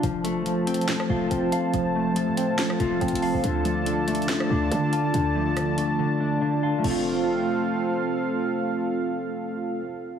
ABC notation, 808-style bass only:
X:1
M:4/4
L:1/16
Q:1/4=141
K:F
V:1 name="808-style bass" clef=bass
F,,,8- F,,,2 F,,,2 F,,,2 z2 | F,,,4- F,,, A,,4- A,, F,,,2 F,,, F,,,2 F,,, | D,,8- D,,2 D,,2 D,4 | D,,8 z8 |
F,,,16 | z16 |]